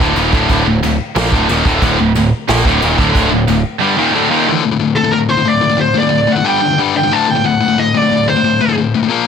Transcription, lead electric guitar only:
4.96 5.12 A4 medium
5.12 5.17 A#4 loud
5.29 5.48 C5 medium
5.48 5.80 D5 medium
5.80 5.97 C5 loud
5.98 6.31 D5 loud
6.32 6.46 F#5 loud
6.46 6.78 G5 loud
6.97 7.13 G5 loud
7.13 7.30 A5 loud
7.30 7.46 G5 medium
7.46 7.79 F#5 loud
7.79 7.97 D#5 loud
7.97 8.29 D5 loud
8.29 8.74 C5 medium

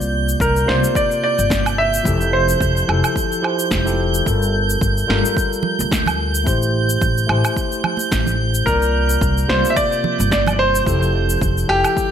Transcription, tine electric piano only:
0.00 0.64 C3 medium
0.00 0.65 A#3 medium
0.00 0.65 F4 medium
0.00 0.66 D5 medium
0.66 0.76 C3 medium
0.66 0.76 A#3 medium
0.66 0.77 F4 medium
0.66 0.77 D5 loud
2.03 2.84 F3 medium
2.03 2.85 E4 medium
2.03 2.86 G4 medium
2.08 2.87 A4 medium
2.87 3.41 F3 medium
2.87 3.41 E4 medium
2.87 3.41 G4 medium
2.87 3.42 A4 medium
3.42 3.82 F3 medium
3.42 3.82 E4 medium
3.42 3.83 G4 medium
3.42 3.83 C5 medium
3.85 3.92 F3 medium
3.85 3.93 E4 medium
3.85 3.93 G4 medium
3.85 3.93 A4 medium
4.24 5.05 G3 medium
4.24 5.06 F4 medium
4.24 5.06 A4 medium
4.28 5.07 A#4 medium
5.07 5.16 G3 medium
5.07 5.17 F4 medium
5.07 5.17 A4 medium
5.07 5.17 A#4 medium
6.44 7.25 A3 medium
6.44 7.26 E4 medium
6.44 7.26 G4 medium
6.48 7.27 C5 medium
7.27 8.63 A3 medium
7.27 8.64 E4 medium
7.27 8.64 G4 medium
7.31 8.65 C5 medium
8.65 9.45 C3 medium
8.65 9.46 A#3 medium
8.65 9.47 F4 medium
8.69 9.47 D5 medium
9.48 9.57 C3 medium
9.48 9.57 A#3 medium
9.48 9.57 F4 medium
9.48 9.58 D5 medium
10.84 11.65 F3 medium
10.84 11.66 E4 medium
10.84 11.67 G4 medium
10.89 11.67 A4 medium
11.68 12.11 F3 medium
11.68 12.11 E4 medium
11.68 12.11 G4 medium
11.68 12.11 A4 medium

